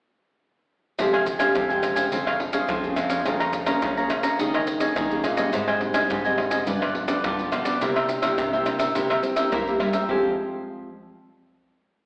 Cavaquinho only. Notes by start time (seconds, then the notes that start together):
0.99 G4 C5 F5 G#5
1.13 C5 F5 G#5
1.26 muted cavaquinho stroke
1.39 C5 F5 G#5
1.55 G4 C5 F5 G#5
1.70 C5 F5 G#5
1.96 C5 F5 G#5
2.12 F4 C5 C#5 F5
2.26 C5 C#5 F5
2.39 muted cavaquinho stroke
2.53 C5 C#5 F5
2.68 F4 C5 C#5 F5
2.96 F4 C5 C#5 F5
3.09 C5 C#5 F5
3.25 G#4 C#5 F5 A#5
3.40 C#5 F5 A#5
3.53 muted cavaquinho stroke
3.66 C#5 F5 A#5
3.82 G#4 C#5 F5 A#5
3.97 C#5 F5 A#5
4.23 C#5 F5 A#5
4.39 D#4 G#4 C#5 D#5
4.54 G#4 C#5 D#5
4.67 muted cavaquinho stroke
4.80 G#4 C#5 D#5
4.96 D#4 G#4 C#5 D#5
5.24 D#4 G#4 C#5 D#5
5.37 G#4 C#5 D#5
5.53 G4 C5 D#5 G#5
5.67 C5 D#5 G#5
5.81 muted cavaquinho stroke
5.94 C5 D#5 G#5
6.10 G4 C5 D#5 G#5
6.25 C5 D#5 G#5
6.50 C5 D#5 G#5
6.67 F4 G4 B4 D5
6.81 G4 B4 D5
6.94 muted cavaquinho stroke
7.08 G4 B4 D5
7.24 F4 G4 B4 D5
7.52 F4 G4 B4 D5
7.65 G4 B4 D5
7.81 E4 A#4 C5 E5
7.96 A#4 C5 E5
8.08 muted cavaquinho stroke
8.22 A#4 C5 E5
8.38 E4 A#4 C5 E5
8.53 A#4 C5 E5
8.79 A#4 C5 E5
8.95 E4 A#4 C5 E5
9.10 A#4 C5 E5
9.23 muted cavaquinho stroke
9.36 A#4 C5 E5
9.52 E4 A#4 C5 E5
9.80 E4 A#4 C5 E5
9.93 A#4 C5 E5
10.09 G4 C5 F5 G#5